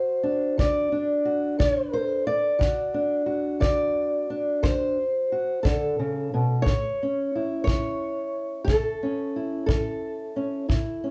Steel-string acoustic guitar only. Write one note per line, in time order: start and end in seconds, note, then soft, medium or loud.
0.00 0.17 D3 medium
0.00 1.24 F#4 soft
0.00 0.58 C5 medium
0.23 0.91 D4 soft
0.58 1.19 D3 medium
0.58 1.93 D5 loud
0.92 2.57 D4 soft
1.25 1.59 F#4 soft
1.59 2.20 D3 medium
1.59 2.59 A4 medium
1.93 2.26 C5 medium
2.27 3.60 D5 medium
2.59 3.21 D3 medium
2.59 3.25 F#4 soft
2.94 4.29 D4 soft
3.26 5.30 F#4 soft
3.60 4.22 D3 medium
3.60 4.63 D5 loud
4.30 4.97 D4 soft
4.63 5.24 D3 medium
4.63 5.64 C5 medium
5.32 5.63 F#4 soft
5.63 5.98 D3 medium
5.63 6.65 A4 medium
5.99 6.32 C#3 medium
6.34 6.66 B2 medium
6.62 7.63 C#5 loud
6.66 7.26 A2 medium
7.03 9.02 C#4 soft
7.35 9.36 E4 soft
7.64 8.27 A2 medium
7.64 8.64 C#5 medium
8.65 9.28 A2 medium
8.65 9.65 A4 medium
9.03 10.35 C#4 soft
9.36 10.68 E4 soft
9.66 10.28 A2 medium
9.66 11.11 A4 medium
10.36 10.65 C#4 soft
10.69 11.11 A2 medium
10.69 11.11 E4 soft
11.04 11.11 C#4 soft